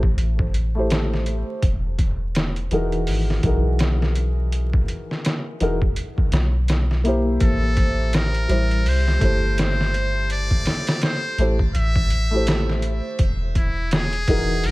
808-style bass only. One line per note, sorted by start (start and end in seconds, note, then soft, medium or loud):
0.00 0.15 A1 medium
0.17 1.43 A1 medium
1.63 2.68 E1 medium
2.71 3.09 E1 medium
3.07 3.40 G#1 medium
3.43 4.85 B1 medium
5.61 5.93 E1 medium
6.32 7.38 B1 medium
7.41 8.47 A1 loud
8.49 8.87 A1 medium
8.85 9.18 C2 loud
9.21 10.63 G1 medium
11.38 11.71 A1 medium
11.75 13.00 A1 medium
13.19 14.25 E1 medium
14.28 14.66 E1 medium
14.64 14.71 G#1 loud